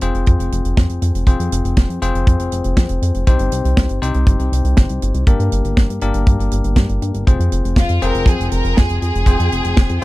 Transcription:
0.01 analog synth bass F1, tine electric piano C4 F4 G#4 C5, closed hi-hat
0.14 analog synth bass F1, closed hi-hat
0.26 analog synth bass F2, kick, closed hi-hat
0.39 analog synth bass F1, closed hi-hat
0.52 analog synth bass F1, closed hi-hat
0.64 analog synth bass F1, closed hi-hat
0.77 analog synth bass F2, kick, snare, closed hi-hat
0.89 analog synth bass F1, closed hi-hat
1.02 analog synth bass F2, closed hi-hat
1.14 analog synth bass F1, closed hi-hat
1.27 analog synth bass F1, tine electric piano C4 F4 G#4 C5, kick, closed hi-hat
1.40 analog synth bass F2, closed hi-hat
1.52 analog synth bass F1, closed hi-hat
1.65 analog synth bass F1, closed hi-hat
1.77 analog synth bass F1, kick, snare, closed hi-hat
1.89 analog synth bass F2, closed hi-hat
2.02 analog synth bass F1, tine electric piano C4 F4 G#4 C5, closed hi-hat
2.15 analog synth bass F1, closed hi-hat
2.27 analog synth bass F2, kick, closed hi-hat
2.40 analog synth bass F1, closed hi-hat
2.52 analog synth bass F1, closed hi-hat
2.64 analog synth bass F1, closed hi-hat
2.77 analog synth bass F2, kick, snare, closed hi-hat
2.89 analog synth bass F1, closed hi-hat
3.02 analog synth bass F2, closed hi-hat
3.14 analog synth bass F1, closed hi-hat
3.27 analog synth bass C2, tine electric piano C4 D#4 G4 C5, kick, closed hi-hat
3.39 analog synth bass G1, closed hi-hat
3.52 analog synth bass C2, closed hi-hat
3.65 analog synth bass C2, closed hi-hat
3.77 analog synth bass C2, kick, snare, closed hi-hat
3.89 analog synth bass G1, closed hi-hat
4.02 analog synth bass C2, tine electric piano C4 D#4 G4 C5, closed hi-hat
4.14 analog synth bass C2, closed hi-hat
4.27 analog synth bass G1, kick, closed hi-hat
4.40 analog synth bass C2, closed hi-hat
4.52 analog synth bass C2, closed hi-hat
4.64 analog synth bass C2, closed hi-hat
4.77 analog synth bass G1, kick, snare, closed hi-hat
4.89 analog synth bass C2, closed hi-hat
5.02 analog synth bass G1, closed hi-hat
5.14 analog synth bass C2, closed hi-hat
5.27 analog synth bass G1, tine electric piano A#3 D4 G4 A#4, kick, closed hi-hat
5.39 analog synth bass G2, closed hi-hat
5.52 analog synth bass G1, closed hi-hat
5.64 analog synth bass G1, closed hi-hat
5.77 analog synth bass G1, kick, snare, closed hi-hat
5.89 analog synth bass G2, closed hi-hat
6.01 analog synth bass G1, tine electric piano A#3 D4 G4 A#4, closed hi-hat
6.14 analog synth bass G1, closed hi-hat
6.27 analog synth bass G2, kick, closed hi-hat
6.40 analog synth bass G1, closed hi-hat
6.51 analog synth bass G1, closed hi-hat
6.64 analog synth bass G1, closed hi-hat
6.76 analog synth bass G2, kick, snare, closed hi-hat
6.89 analog synth bass G1, closed hi-hat
7.02 analog synth bass G2, closed hi-hat
7.14 analog synth bass G1, closed hi-hat
7.27 analog synth bass F1, tine electric piano C4 F4 G#4 C5, kick, closed hi-hat
7.39 analog synth bass F2, closed hi-hat
7.52 analog synth bass F1, closed hi-hat
7.64 analog synth bass F1, closed hi-hat
7.76 analog synth bass F1, violin section F4, kick, snare, closed hi-hat
7.89 analog synth bass F2, closed hi-hat
8.02 analog synth bass F1, tine electric piano C4 F4 G#4 C5, violin section A#4, closed hi-hat
8.15 analog synth bass F1, closed hi-hat
8.26 analog synth bass F2, violin section G#4, kick, closed hi-hat
8.40 analog synth bass F1, closed hi-hat
8.52 analog synth bass F1, violin section A#4, closed hi-hat
8.65 analog synth bass F1, closed hi-hat
8.77 analog synth bass F2, violin section G#4, kick, snare, closed hi-hat
8.89 analog synth bass F1, closed hi-hat
9.02 analog synth bass F2, violin section G#4, closed hi-hat
9.14 analog synth bass F1, closed hi-hat
9.26 analog synth bass F1, tine electric piano C4 F4 G#4 C5, kick, closed hi-hat
9.40 analog synth bass F2, closed hi-hat
9.52 analog synth bass F1, closed hi-hat
9.64 analog synth bass F1, closed hi-hat
9.77 analog synth bass F1, kick, snare, closed hi-hat
9.89 analog synth bass F2, closed hi-hat

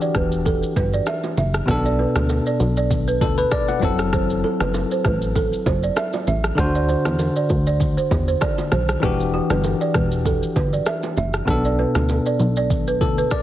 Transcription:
Already playing: tine electric piano E3 D4 F#4 G4
0.01 balafon D5, shaker
0.15 analog synth bass E1, balafon B4, kick, cross-stick, high bongo, shaker
0.32 shaker
0.45 balafon A4, kick, low conga, shaker
0.63 shaker
0.76 analog synth bass G1, balafon B4, kick, low bongo, shaker
0.93 balafon D5, shaker
1.06 balafon E5, cross-stick, high bongo, shaker
1.23 low bongo, shaker
1.37 analog synth bass F#1, balafon E5, low conga, shaker
1.54 cross-stick, shaker
1.66 analog synth bass B1, tine electric piano B2 B3 D4, kick, cross-stick, low conga, shaker
1.71 tine electric piano A4
1.85 balafon D5, shaker
1.99 balafon B4, low bongo
2.16 analog synth bass D2, cross-stick, low bongo, shaker
2.29 high bongo, shaker
2.46 balafon D5, shaker
2.60 analog synth bass B1, high bongo, shaker
2.77 balafon D5, shaker
2.90 kick, low conga, shaker
3.08 balafon B4, shaker
3.21 analog synth bass D2, tine electric piano A4, kick, low bongo, shaker
3.38 tine electric piano B4, balafon B4, shaker
3.51 tine electric piano D5, balafon D5, kick, cross-stick, high bongo, shaker
3.68 tine electric piano F#5, low bongo, shaker
3.80 analog synth bass F#1, tine electric piano F#3 C4 E4, balafon C5, kick, low conga, shaker
3.85 tine electric piano A4
3.99 cross-stick, shaker
4.13 balafon C5, kick, cross-stick, low conga, shaker
4.30 shaker
4.44 balafon A4, low bongo
4.60 analog synth bass F#1, balafon B4, cross-stick, low bongo, shaker
4.74 high bongo, shaker
4.91 balafon C5, shaker
5.04 analog synth bass A1, balafon B4, kick, cross-stick, high bongo, shaker
5.22 shaker
5.35 balafon A4, kick, low conga, shaker
5.53 shaker
5.66 analog synth bass F#1, balafon C5, kick, low bongo, shaker
5.83 balafon D5, shaker
5.96 balafon E5, cross-stick, high bongo, shaker
6.13 low bongo, shaker
6.27 analog synth bass A1, balafon E5, low conga, shaker
6.44 cross-stick, shaker
6.55 analog synth bass D2, tine electric piano D3 D4 F#4, kick, cross-stick, low conga, shaker
6.60 tine electric piano C5
6.75 balafon D5, shaker
6.89 balafon C5, low bongo, shaker
7.05 analog synth bass E2, cross-stick, low bongo, shaker
7.19 high bongo, shaker
7.36 balafon D5, shaker
7.49 analog synth bass D2, kick, high bongo, shaker
7.66 balafon D5, shaker
7.80 kick, low conga, shaker
7.97 balafon C5, shaker
8.11 analog synth bass E2, kick, low bongo, shaker
8.28 balafon C5, shaker
8.41 balafon D5, kick, cross-stick, high bongo, shaker
8.58 low bongo, shaker
8.72 analog synth bass B1, balafon C5, cross-stick, low conga, shaker
8.89 cross-stick, shaker
9.00 analog synth bass E1, tine electric piano E3 D4 F#4, balafon B4, kick, cross-stick, low conga, shaker
9.05 tine electric piano G4
9.20 shaker
9.34 balafon G4, low bongo
9.50 analog synth bass G1, balafon B4, cross-stick, low bongo, shaker
9.64 high bongo, shaker
9.81 balafon D5, shaker
9.94 analog synth bass E1, balafon B4, kick, cross-stick, high bongo, shaker
10.12 shaker
10.25 balafon A4, kick, low conga, shaker
10.43 shaker
10.56 analog synth bass G1, balafon B4, kick, low bongo, shaker
10.73 balafon D5, shaker
10.86 balafon E5, cross-stick, high bongo, shaker
11.03 low bongo, shaker
11.17 analog synth bass F#1, balafon E5, low conga, shaker
11.34 cross-stick, shaker
11.45 analog synth bass B1, tine electric piano B2 B3 D4, kick, cross-stick, low conga, shaker
11.50 tine electric piano A4
11.65 balafon D5, shaker
11.79 balafon B4, low bongo
11.95 analog synth bass D2, cross-stick, low bongo, shaker
12.09 high bongo, shaker
12.26 balafon D5, shaker
12.39 analog synth bass B1, high bongo, shaker
12.56 balafon D5, shaker
12.70 kick, low conga, shaker
12.88 balafon B4, shaker
13.01 analog synth bass D2, tine electric piano A4, kick, low bongo, shaker
13.18 balafon B4, shaker
13.31 tine electric piano D5, balafon D5, kick, cross-stick, high bongo, shaker

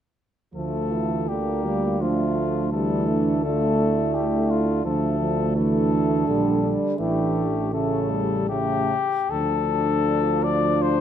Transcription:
0.54 tuba D2, euphonium F3, trombone section A3, french horn section F4, flugelhorn A4
0.91 euphonium E3
1.28 euphonium D3, trombone section A#3, flugelhorn G4
1.65 euphonium G3
2.01 euphonium F3, trombone section A3, french horn section D4, flugelhorn F4
2.71 euphonium E3, trombone section G3, french horn section D4, flugelhorn A4
3.08 trombone section A3
3.44 euphonium D3, french horn section F4, flugelhorn A4
3.79 french horn section E4
4.15 flugelhorn G4
4.50 flugelhorn F4
4.84 tuba D2, euphonium F3, trombone section A3, french horn section D4, flugelhorn A4
5.20 euphonium F3
5.56 euphonium E3, flugelhorn A4
6.28 tuba A#1, euphonium D3, trombone section G3
6.63 euphonium D3
6.99 tuba A1, euphonium E3, trombone section A3, flugelhorn G4
7.72 euphonium C#3, trombone section A3, french horn section C#4, flugelhorn A4
8.10 trombone section G3
8.49 euphonium C#3, trombone section A3, french horn section C#4, flugelhorn G4
9.30 tuba D2, euphonium F3, trombone section D4, french horn section F4, flugelhorn A4
10.44 flugelhorn D5
10.82 flugelhorn C5

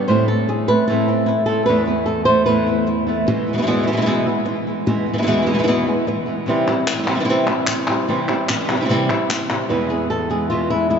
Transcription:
0.08 nylon-string guitar A2 E3 A3 C4 E4 C5
0.28 nylon-string guitar A3 C4 E4 A4
0.48 nylon-string guitar G#4, muted nylon-string guitar stroke
0.68 nylon-string guitar A3 C4 E4 B4
0.88 nylon-string guitar A2 E3 A3 C4 E4 A4
1.08 nylon-string guitar A3 C4 E4
1.26 nylon-string guitar E4, muted nylon-string guitar stroke
1.46 nylon-string guitar A3 C4 E4 A4
1.66 nylon-string guitar E2 A2 E3 A3 B3 B4
1.70 nylon-string guitar E4
1.86 nylon-string guitar A3 B3 E4
1.90 nylon-string guitar E3
2.06 nylon-string guitar A4, muted nylon-string guitar stroke
2.25 nylon-string guitar E3 A3 B3 E4 C5
2.46 nylon-string guitar E2 A2 E3 A3 B3 E4 B4
2.66 nylon-string guitar E3 A3 B3 E4
2.87 nylon-string guitar E4, muted nylon-string guitar stroke
3.07 nylon-string guitar E3 A3 B3 E4
3.27 nylon-string guitar E2 B2 E3 G#3 B3 E4, muted nylon-string guitar stroke
3.47 nylon-string guitar E3 G#3 B3 E4
3.53 nylon-string guitar B2 E3 G#3 B3 E4
3.58 nylon-string guitar B2 E3 G#3 B3 E4
3.62 nylon-string guitar B2 E3 G#3 B3 E4
3.67 nylon-string guitar E2 B2 E3 G#3 B3 E4
3.78 nylon-string guitar B2 E3 G#3 B3 E4
3.82 nylon-string guitar B2 E3 G#3 B3 E4
3.87 nylon-string guitar E2 B2 E3 G#3 B3 E4
3.92 nylon-string guitar B2 E3 G#3 B3 E4
3.97 nylon-string guitar B2 E3 G#3 B3 E4
4.01 nylon-string guitar B2 E3 G#3 B3 E4
4.06 nylon-string guitar E2 B2 E3 G#3 B3 E4, muted nylon-string guitar stroke
4.27 nylon-string guitar E3 G#3 B3 E4
4.45 nylon-string guitar E3 G#3 B3 E4, muted nylon-string guitar stroke
4.67 nylon-string guitar E3 G#3 B3 E4
4.86 nylon-string guitar E2 B2 E3 G#3 B3 E4, muted nylon-string guitar stroke
5.06 nylon-string guitar E3 G#3 B3 E4
5.13 nylon-string guitar B2 E3 G#3 B3 E4
5.18 nylon-string guitar B2 E3 G#3 B3 E4
5.22 nylon-string guitar B2 E3 G#3 B3 E4
5.27 nylon-string guitar E2 B2 E3 G#3 B3 E4
5.37 nylon-string guitar B2 E3 G#3 B3 E4
5.42 nylon-string guitar B2 E3 G#3 B3 E4
5.46 nylon-string guitar E2 B2 E3 G#3 B3 E4
5.54 nylon-string guitar B2 E3 G#3 B3 E4
5.59 nylon-string guitar B2 E3 G#3 B3 E4
5.63 nylon-string guitar B2 E3 G#3 B3 E4, muted nylon-string guitar stroke
5.68 nylon-string guitar E2 B2 E3 G#3 B3 E4
5.86 nylon-string guitar E3 G#3 B3 E4
6.06 nylon-string guitar E3 G#3 B3 E4, muted nylon-string guitar stroke
6.26 nylon-string guitar E3 G#3 B3 E4
6.46 nylon-string guitar C3 E3 G3 C4 E4
6.67 nylon-string guitar G3 C4 E4
6.87 nylon-string guitar G3 C4 E4, muted nylon-string guitar stroke, clap
6.94 nylon-string guitar E3 G3 C4 E4
6.98 nylon-string guitar E3 G3 C4 E4
7.03 nylon-string guitar E3 G3 C4 E4
7.07 nylon-string guitar C3 E3 G3 C4 E4, clap
7.15 nylon-string guitar E3 G3 C4 E4
7.20 nylon-string guitar E3 G3 C4 E4
7.25 nylon-string guitar E3 G3 C4 E4, muted nylon-string guitar stroke
7.29 nylon-string guitar C3 E3 G3 C4 E4
7.47 nylon-string guitar G3 C4 E4, clap
7.67 nylon-string guitar E3 G3 C4 E4, muted nylon-string guitar stroke, clap
7.87 nylon-string guitar G3 C4 E4, clap
8.08 nylon-string guitar C3 E3 G3 C4 E4
8.28 nylon-string guitar G3 C4 E4, clap
8.48 nylon-string guitar G3 C4 E4, muted nylon-string guitar stroke, clap
8.55 nylon-string guitar E3 G3 C4 E4
8.60 nylon-string guitar E3 G3 C4 E4
8.64 nylon-string guitar E3 G3 C4 E4
8.69 nylon-string guitar C3 E3 G3 C4 E4, clap
8.76 nylon-string guitar E3 G3 C4 E4
8.81 nylon-string guitar E3 G3 C4 E4
8.85 nylon-string guitar E3 G3 C4 E4, muted nylon-string guitar stroke
8.89 nylon-string guitar C3 E3 G3 C4 E4
9.09 nylon-string guitar G3 C4 E4, clap
9.29 nylon-string guitar E3 G3 C4 E4, muted nylon-string guitar stroke, clap
9.50 nylon-string guitar G3 C4 E4, clap
9.69 nylon-string guitar E2 B2 E3 G#3 B3 E4 B4
9.89 nylon-string guitar E3 G#3 B3 E4 G#4
10.10 nylon-string guitar A4, muted nylon-string guitar stroke
10.30 nylon-string guitar E3 G#3 B3 E4 G#4
10.50 nylon-string guitar E2 B2 E3 G#3 B3 E4 F4
10.70 nylon-string guitar E3 G#3 B3 E4
10.90 nylon-string guitar G#3 E4, muted nylon-string guitar stroke

